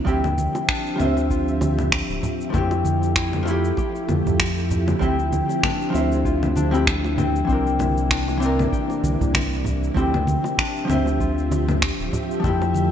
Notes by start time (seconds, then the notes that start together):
Already playing: D4 G4
0.05 D2 F3 C4 E4 G4 E5, kick, high bongo, cabasa
0.24 low conga, cabasa
0.38 high conga, cabasa
0.55 high bongo, cabasa
0.69 D4, finger snap, kick, cabasa
0.86 cabasa
0.96 F3 C4, low conga
1.00 D2 C5 E5, cabasa
1.17 high bongo, cabasa
1.30 F4, kick, cabasa
1.48 cabasa
1.61 high bongo, high conga, cabasa
1.79 low conga, cabasa
1.92 finger snap, kick, cabasa
2.09 D1, cabasa
2.23 high bongo, low conga, cabasa
2.41 cabasa
2.50 F3 A3, kick, low conga
2.54 F2 A3 C4 E4 G4, cabasa
2.71 high bongo, cabasa
2.85 high conga, cabasa
3.03 cabasa
3.16 E4, finger snap, kick, cabasa
3.33 high bongo, low conga, cabasa
3.43 F3 A3
3.47 E4 G4, cabasa
3.64 cabasa
3.77 G4, kick, high bongo, cabasa
3.95 cabasa
4.09 F2, high conga, low conga, cabasa
4.26 F2, low conga, cabasa
4.39 finger snap, kick, high bongo, cabasa
4.58 cabasa
4.71 low conga, cabasa
4.87 high bongo, low conga, cabasa
4.99 D2 F3 C4 E4 G4, kick, cabasa
5.19 cabasa
5.32 high conga, cabasa
5.49 high bongo, cabasa
5.63 D4, finger snap, kick, low conga, cabasa
5.81 cabasa
5.90 F3 C4
5.94 D2 C5 E5, high bongo, cabasa
6.12 cabasa
6.25 F4, kick, cabasa
6.43 low conga, cabasa
6.56 D4, high bongo, high conga, cabasa
6.71 F3 C4 E4 G4, cabasa
6.87 D2, finger snap, kick, cabasa
7.04 high bongo, cabasa
7.18 C4, low conga, cabasa
7.36 cabasa
7.45 E3 C4
7.49 C2 C3 A#3 D4 A#4, kick, cabasa
7.67 cabasa
7.79 high bongo, high conga, low conga, cabasa
7.97 cabasa
8.10 D4, finger snap, kick, cabasa
8.28 high bongo, cabasa
8.37 E3 C4
8.42 D4 A#4, cabasa
8.59 low conga, cabasa
8.72 G4, kick, cabasa
8.90 high bongo, cabasa
9.03 C2, high conga, cabasa
9.21 C2, low conga, cabasa
9.34 finger snap, kick, high bongo, low conga, cabasa
9.53 cabasa
9.65 low conga, cabasa
9.84 cabasa
9.94 D2 F3 C4 E4 G4 E5, kick, high bongo, cabasa
9.98 G4
10.14 low conga, cabasa
10.27 high conga, cabasa
10.44 high bongo, cabasa
10.58 D4, finger snap, kick, cabasa
10.76 cabasa
10.85 F3 C4
10.89 D2 C5 E5, low conga, cabasa
11.06 high bongo, cabasa
11.20 F4, kick, cabasa
11.38 cabasa
11.51 high bongo, high conga, cabasa
11.69 low conga, cabasa
11.82 finger snap, kick, cabasa
12.00 D1, cabasa
12.13 high bongo, low conga, cabasa
12.31 cabasa
12.40 F3 A3
12.44 F2 A3 C4 E4 G4, kick, low conga, cabasa
12.62 high bongo, cabasa
12.74 high conga, cabasa